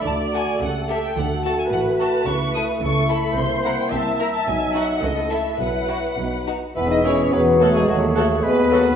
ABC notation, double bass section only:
X:1
M:2/4
L:1/8
Q:1/4=108
K:Dlyd
V:1 name="Double bass section" clef=bass
D,,2 C,,2 | D,,2 A,,,2 | [K:Bmix] C,,2 C,,2 | =C,,2 C,,2 |
B,,,2 C,,2 | B,,,2 B,,,2 | E,,,2 E,,,2 | D,,2 D,,2 |]